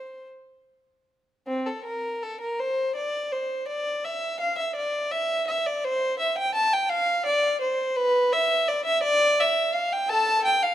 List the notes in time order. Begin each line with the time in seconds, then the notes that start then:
Already playing: C5
1.47 C4
1.66 A4
1.84 A#4
2.22 A4
2.41 A#4
2.59 C5
2.96 D5
3.32 C5
3.68 D5
4.04 E5
4.40 F5
4.58 E5
4.75 D5
5.11 E5
5.47 E5
5.66 D5
5.84 C5
6.19 E5
6.38 G5
6.55 A5
6.73 G5
6.89 F5
7.26 D5
7.61 C5
7.96 B4
8.33 E5
8.68 D5
8.85 E5
9.03 D5
9.40 E5
9.74 F5
9.92 G5
10.09 A4 A5
10.45 G5
10.63 F5